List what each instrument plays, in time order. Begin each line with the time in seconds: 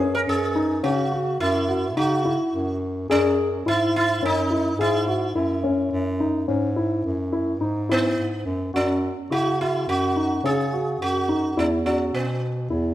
Already playing: bass clarinet F#2, sitar G#4
0.00 grand piano C#4
0.15 sitar A#4
0.27 bass clarinet F#2, sitar G#4
0.55 grand piano D#4
0.83 bass clarinet C#3, grand piano C#4, sitar F#4
1.12 grand piano F#4
1.40 bass clarinet F#2, sitar E4
1.68 grand piano F#4
1.96 bass clarinet C#3, grand piano D#4, sitar F#4
2.25 grand piano E4
2.53 bass clarinet F#2
3.09 bass clarinet F#2, sitar C#4, grand piano G#4
3.66 bass clarinet G#2, grand piano E4, sitar E4
3.96 sitar E4
4.22 bass clarinet F#2, grand piano C#4, sitar D#4
4.50 grand piano E4
4.78 bass clarinet G#2, sitar E4, grand piano G#4
5.08 grand piano F#4
5.35 bass clarinet F#2, grand piano E4
5.64 grand piano C#4
5.92 bass clarinet F#2
6.20 grand piano D#4
6.48 bass clarinet G#2, grand piano C#4
6.76 grand piano E4
7.05 bass clarinet F#2
7.32 grand piano E4
7.61 bass clarinet G#2, grand piano D#4
7.89 sitar B3, grand piano E4
8.18 bass clarinet G#2
8.45 bass clarinet F#2
8.73 bass clarinet F#2, sitar C#4, grand piano F#4
9.30 bass clarinet C#3, grand piano E4, sitar F#4
9.60 sitar E4, grand piano F#4
9.87 bass clarinet F#2, sitar F#4
10.16 grand piano D#4
10.43 bass clarinet C#3, grand piano C#4, sitar G#4
10.73 grand piano F#4
10.99 bass clarinet F#2, sitar F#4
11.29 grand piano D#4
11.57 bass clarinet E2, sitar C#4, grand piano E4
11.86 sitar C#4, grand piano F#4
12.13 bass clarinet B2, sitar B3
12.70 bass clarinet E2, grand piano E4